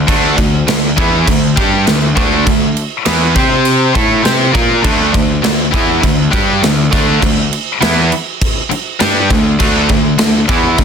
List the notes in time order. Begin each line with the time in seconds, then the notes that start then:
0.07 D2 D3 A3 D4, kick, crash
0.37 D2 D3 A3, kick, crash
0.67 D2 D3 A3, snare, crash
0.96 E2 E3 B3 E4, kick, crash
1.26 D2 D3 A3, kick, crash
1.56 G2 G3 D4 G4, kick, crash
1.86 D2 D3 A3, snare, crash
2.16 D2 D3 A3 D4, kick, crash
2.45 D2 D3 A3, kick, crash
2.77 crash
3.06 E2 E3 B3 E4, snare, crash
3.35 C3 C4 G4 C5, kick, crash
3.65 crash
3.94 A2 A3 E4 A4, kick, crash
4.23 C3 C4 G4 C5, snare, crash
4.52 A#2 A#3 F4 A#4, kick, crash
4.82 D2 D3 A3 D4, kick, crash
5.13 D2 D3 A3, kick, crash
5.42 D2 D3 A3, snare, crash
5.71 E2 E3 B3 E4, kick, crash
6.02 D2 D3 A3, kick, crash
6.31 G2 G3 D4 G4, kick, crash
6.61 D2 D3 A3, snare, crash
6.92 D2 D3 A3 D4, kick, crash
7.22 D2 D3 A3, kick, crash
7.53 crash
7.81 E2 E3 B3 E4, snare, crash
8.12 crash
8.42 kick, crash
8.70 muted distorted electric guitar stroke, muted overdriven electric guitar stroke, muted picked electric bass stroke, crash
9.00 G2 G3 D4 G4, snare, crash
9.29 D2 D3 A3, kick, crash
9.59 D2 D3 A3 D4, kick, crash
9.89 D2 D3 A3, kick, crash
10.18 D2 D3 A3, snare, crash
10.48 E2 E3 B3 E4, kick, crash
10.77 D2 D3 A3, kick, crash